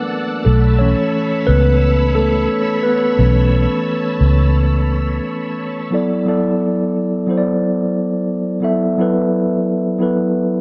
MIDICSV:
0, 0, Header, 1, 4, 480
1, 0, Start_track
1, 0, Tempo, 681818
1, 317, Time_signature, 4, 2, 24, 8
1, 7468, End_track
2, 0, Start_track
2, 0, Title_t, "String machine"
2, 0, Program_c, 0, 50
2, 0, Note_on_c, 0, 74, 77
2, 0, Note_on_c, 0, 78, 76
2, 0, Note_on_c, 0, 81, 75
2, 0, Note_on_c, 0, 88, 91
2, 285, Note_off_c, 0, 88, 0
2, 286, Note_off_c, 0, 74, 0
2, 287, Note_off_c, 0, 78, 0
2, 308, Note_on_c, 0, 73, 80
2, 309, Note_on_c, 0, 83, 75
2, 309, Note_on_c, 0, 88, 86
2, 4124, Note_off_c, 0, 73, 0
2, 4125, Note_off_c, 0, 83, 0
2, 4125, Note_off_c, 0, 88, 0
2, 4129, Note_off_c, 0, 81, 0
2, 7468, End_track
3, 0, Start_track
3, 0, Title_t, "Tine electric piano"
3, 0, Program_c, 1, 4
3, 0, Control_c, 1, 64, 127
3, 0, Note_on_c, 1, 52, 51
3, 0, Note_on_c, 1, 54, 54
3, 0, Note_on_c, 1, 58, 63
3, 0, Note_on_c, 1, 59, 64
3, 0, Note_on_c, 1, 62, 63
3, 0, Note_on_c, 1, 70, 86
3, 0, Note_on_c, 1, 71, 83
3, 294, Note_off_c, 1, 54, 0
3, 295, Note_off_c, 1, 52, 0
3, 298, Note_off_c, 1, 62, 0
3, 317, Note_on_c, 1, 69, 89
3, 325, Note_off_c, 1, 59, 0
3, 325, Control_c, 1, 64, 0
3, 327, Note_off_c, 1, 70, 0
3, 329, Note_off_c, 1, 58, 0
3, 330, Note_off_c, 1, 71, 0
3, 333, Note_on_c, 1, 57, 72
3, 450, Control_c, 1, 64, 127
3, 549, Note_off_c, 1, 57, 0
3, 554, Note_on_c, 1, 73, 102
3, 563, Note_on_c, 1, 52, 58
3, 564, Note_off_c, 1, 69, 0
3, 567, Note_on_c, 1, 57, 51
3, 571, Note_on_c, 1, 61, 81
3, 889, Note_off_c, 1, 52, 0
3, 891, Note_off_c, 1, 57, 0
3, 1017, Note_off_c, 1, 61, 0
3, 1032, Note_on_c, 1, 71, 103
3, 1050, Note_off_c, 1, 73, 0
3, 1054, Note_on_c, 1, 59, 81
3, 1497, Note_off_c, 1, 59, 0
3, 1515, Note_on_c, 1, 69, 94
3, 1529, Note_off_c, 1, 71, 0
3, 1535, Note_on_c, 1, 57, 69
3, 1968, Note_off_c, 1, 69, 0
3, 1978, Note_off_c, 1, 57, 0
3, 1994, Note_on_c, 1, 71, 82
3, 2017, Note_on_c, 1, 59, 72
3, 2243, Note_on_c, 1, 52, 55
3, 2249, Note_on_c, 1, 57, 47
3, 2253, Note_on_c, 1, 61, 58
3, 2687, Note_off_c, 1, 71, 0
3, 2699, Note_off_c, 1, 59, 0
3, 2932, Note_off_c, 1, 52, 0
3, 2935, Note_off_c, 1, 57, 0
3, 2937, Note_off_c, 1, 61, 0
3, 4159, Note_on_c, 1, 54, 66
3, 4165, Note_on_c, 1, 59, 69
3, 4166, Control_c, 1, 64, 0
3, 4171, Note_on_c, 1, 64, 65
3, 4178, Note_on_c, 1, 69, 68
3, 4185, Note_on_c, 1, 74, 77
3, 4303, Control_c, 1, 64, 127
3, 4337, Note_off_c, 1, 54, 0
3, 4340, Note_off_c, 1, 59, 0
3, 4343, Note_off_c, 1, 64, 0
3, 4347, Note_off_c, 1, 69, 0
3, 4350, Note_off_c, 1, 74, 0
3, 4404, Note_on_c, 1, 54, 75
3, 4411, Note_on_c, 1, 59, 64
3, 4418, Note_on_c, 1, 64, 69
3, 4424, Note_on_c, 1, 69, 76
3, 4431, Note_on_c, 1, 74, 78
3, 4920, Note_off_c, 1, 54, 0
3, 4923, Note_off_c, 1, 59, 0
3, 4927, Note_off_c, 1, 64, 0
3, 4930, Note_off_c, 1, 69, 0
3, 4933, Note_off_c, 1, 74, 0
3, 5116, Note_on_c, 1, 54, 75
3, 5123, Note_on_c, 1, 59, 66
3, 5132, Note_on_c, 1, 64, 60
3, 5137, Note_on_c, 1, 69, 57
3, 5143, Note_on_c, 1, 72, 66
3, 5181, Note_off_c, 1, 72, 0
3, 5191, Note_on_c, 1, 74, 82
3, 5807, Note_off_c, 1, 54, 0
3, 5811, Note_off_c, 1, 59, 0
3, 5815, Note_off_c, 1, 64, 0
3, 5818, Note_off_c, 1, 69, 0
3, 5845, Note_off_c, 1, 74, 0
3, 6057, Note_on_c, 1, 54, 68
3, 6066, Note_on_c, 1, 59, 71
3, 6072, Note_on_c, 1, 64, 66
3, 6077, Note_on_c, 1, 69, 66
3, 6085, Note_on_c, 1, 76, 76
3, 6246, Note_off_c, 1, 54, 0
3, 6251, Note_off_c, 1, 59, 0
3, 6254, Note_off_c, 1, 64, 0
3, 6256, Note_off_c, 1, 69, 0
3, 6260, Note_off_c, 1, 76, 0
3, 6319, Note_on_c, 1, 54, 83
3, 6325, Note_on_c, 1, 59, 67
3, 6332, Note_on_c, 1, 64, 74
3, 6339, Note_on_c, 1, 69, 71
3, 6346, Note_on_c, 1, 71, 86
3, 6837, Note_off_c, 1, 54, 0
3, 6840, Note_off_c, 1, 59, 0
3, 6844, Note_off_c, 1, 64, 0
3, 6847, Note_off_c, 1, 69, 0
3, 6851, Note_off_c, 1, 71, 0
3, 7028, Note_on_c, 1, 54, 73
3, 7036, Note_on_c, 1, 59, 66
3, 7042, Note_on_c, 1, 64, 67
3, 7050, Note_on_c, 1, 69, 59
3, 7057, Note_on_c, 1, 71, 73
3, 7468, Note_off_c, 1, 54, 0
3, 7468, Note_off_c, 1, 59, 0
3, 7468, Note_off_c, 1, 64, 0
3, 7468, Note_off_c, 1, 69, 0
3, 7468, Note_off_c, 1, 71, 0
3, 7468, End_track
4, 0, Start_track
4, 0, Title_t, "Fingered electric bass"
4, 0, Program_c, 2, 33
4, 324, Note_on_c, 2, 35, 101
4, 654, Note_off_c, 2, 35, 0
4, 1044, Note_on_c, 2, 37, 103
4, 1732, Note_off_c, 2, 37, 0
4, 2243, Note_on_c, 2, 35, 97
4, 2573, Note_off_c, 2, 35, 0
4, 2961, Note_on_c, 2, 37, 97
4, 3651, Note_off_c, 2, 37, 0
4, 7468, End_track
0, 0, End_of_file